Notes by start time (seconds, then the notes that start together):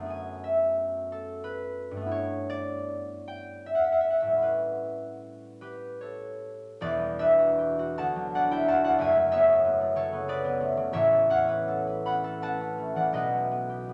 Already playing: F#2 A3 E4 F#4 D5 E5 F#5 A5
0.00 B3
0.05 G#4
0.10 G#5
0.44 E5
1.12 A4
1.44 B4
1.91 G2
1.96 A3
2.01 B3
2.06 E4
2.11 C#5
2.50 D5
3.28 G5
3.66 E5
3.75 F#5
3.84 E5
3.92 F#5
4.01 E5
4.10 F#5
4.20 A2 E5
4.27 G3
4.32 C#4
4.38 E4
4.42 B4
5.61 G4 B4
6.01 A4 C#5
6.81 E1 E2 B4 D5
6.99 G3
7.19 D4 B4 E5
7.39 F#4
7.59 G4
7.79 F#4
7.98 D2 F#5 A5
8.16 F#3
8.35 D4 D5 F#5
8.51 E4 E5 G5
8.68 F#4 F#5 A5
8.84 E4 D5 F#5
8.98 F#1 F#2 E5 G#5
9.15 A3
9.31 B3 C#5 E5
9.48 G#4
9.64 B3
9.80 A3
9.95 C#3 A4 C#5
10.13 B3
10.28 G#4 B4 D5
10.44 B3
10.60 A3
10.77 C#3
10.93 A1 A2 C#5 E5
11.11 A3
11.30 C#4 C#5 F#5
11.48 B4
11.68 A4
11.87 B4
12.05 C#4 F#5 B5
12.24 A4
12.42 B4 F#5 A5
12.60 C#4
12.78 A3
12.95 E3 D5 F#5
13.12 B1 B2 B4 D#5
13.33 A3
13.51 B3
13.70 G4
13.89 B3